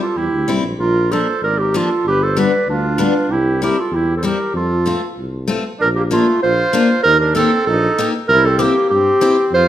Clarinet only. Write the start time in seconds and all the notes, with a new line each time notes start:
0.01 F4
0.18 E4
0.79 F4
1.12 A4
1.44 A#4
1.58 G4
1.77 F4
2.08 G4
2.23 A4
2.39 B4
2.70 D4
3.32 E4
3.64 G4
3.80 F4
3.95 E4
4.17 A4
4.24 G4
4.56 F4
5.81 A#4
5.96 G4
6.13 F4
6.43 C5
7.03 A#4
7.20 A#4
7.35 A4
7.66 A4
8.28 A#4
8.45 A4
8.60 G4
8.90 G4
9.54 C5